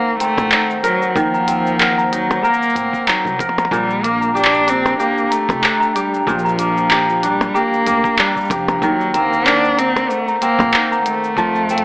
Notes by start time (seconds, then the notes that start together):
Already playing: D#3 A#3 C4 D#4 A#4 C5 F#5
0.20 A3 C4 A#5, closed hi-hat, shaker
0.37 A#1, kick, percussion blips, shaker
0.52 D#4, clap, shaker
0.70 shaker
0.83 F#3 A#4 A#5, closed hi-hat, shaker
1.02 shaker
1.16 D#2 D#3 F3, kick, shaker
1.34 A#5, shaker
1.48 C4, closed hi-hat, shaker
1.67 shaker
1.80 A#4, clap, shaker
1.98 A#5, shaker
2.12 F#3 D#4, closed hi-hat, shaker
2.31 percussion blips, shaker
2.43 A#3 A#4 A#5, shaker
2.54 shaker
2.62 shaker
2.70 shaker
2.75 A2 C4, closed hi-hat, shaker
2.93 kick, shaker
3.08 F#3 D#4 A#5, clap, shaker
3.25 C2, kick, shaker
3.39 F3 A#4, kick, closed hi-hat, percussion blips, shaker
3.49 percussion blips
3.58 A#5, percussion blips, shaker
3.65 percussion blips
3.71 A#1 A#2 G3 D4 G5 A#5, kick, shaker
3.90 shaker
4.03 A#3, closed hi-hat, shaker
4.21 A#5, shaker
4.35 D4 G4, shaker
4.45 clap
4.54 shaker
4.67 C4 D4 A#5, closed hi-hat, shaker
4.86 percussion blips, shaker
4.99 A#3 G4, shaker
5.18 shaker
5.31 A3 A#5, closed hi-hat, shaker
5.49 F1, kick, percussion blips, shaker
5.63 D4, clap, shaker
5.80 A#5, shaker
5.96 G3 G4, closed hi-hat, shaker
6.14 shaker
6.27 A#1 A#2 F3, kick, shaker
6.39 shaker
6.45 A#5, shaker
6.49 shaker
6.59 A#3, closed hi-hat, shaker
6.77 shaker
6.91 G4 A#5, clap, shaker
7.10 shaker
7.23 G3 D4, closed hi-hat, shaker
7.41 percussion blips, shaker
7.54 A#3 G4 A#5, shaker
7.73 shaker
7.87 D2 A#3, closed hi-hat, shaker
8.04 A#5, kick, shaker
8.18 G3 D4, clap, shaker
8.36 kick, shaker
8.41 shaker
8.45 shaker
8.47 F1 G4, kick, closed hi-hat, percussion blips, shaker
8.51 F3, shaker
8.68 A#5, percussion blips, shaker
8.81 D#2 D#3 F#3 C5 F#5, kick, shaker
9.01 shaker
9.14 A#3 C4 A#5, closed hi-hat, shaker
9.33 shaker
9.46 D4 A#4, clap, shaker
9.65 shaker
9.77 C4 D#4 A#5, closed hi-hat, shaker
9.96 percussion blips, shaker
10.10 A3, shaker
10.28 A#5, shaker
10.40 A#3 C4, closed hi-hat, shaker
10.59 A#1, kick, percussion blips, shaker
10.74 D#4, clap, shaker
10.92 A#5, shaker
11.06 A3, closed hi-hat, shaker
11.24 shaker
11.36 F2 F3 A4 F5 A5, kick, shaker
11.55 shaker
11.69 C4, shaker
11.78 closed hi-hat